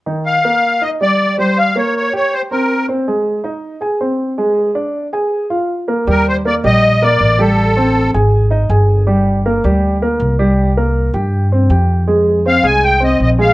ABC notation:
X:1
M:4/4
L:1/8
Q:1/4=160
K:Eb
V:1 name="Accordion"
z f3 e d2 c | f _d d d c B2 z | z8 | z8 |
B c d e2 d2 =A- | =A3 z4 z | z8 | z8 |
z2 f a g e e f |]
V:2 name="Grand piano"
[E,E]2 [B,B]2 [Ee] [G,G]2 [G,G]- | [G,G] [B,B]2 [Gg]2 [Cc]2 [Cc] | [A,A]2 [Ee]2 [Aa] [Cc]2 [A,A]- | [A,A] [Dd]2 [Aa]2 [Ff]2 [B,B] |
[G,G]2 [B,B] [G,G]2 [B,B]2 [G,G]- | [G,G] [Cc]2 [^G^g]2 [Ee] [Aa]2 | [G,G]2 [B,B] [G,G]2 [B,B]2 [G,G]- | [G,G] [B,B]2 [Gg]2 [Cc] [Gg]2 |
[A,A]2 [Cc] [A,A]2 [Cc]2 [A,A] |]
V:3 name="Upright bass" clef=bass
z8 | z8 | z8 | z8 |
E,,3 B,,,3 =A,,,2- | =A,,,3 ^G,,,3 =G,,,2- | G,,,3 D,,3 C,,2- | C,,3 G,,3 F,,2- |
F,,3 C,,3 B,,,2 |]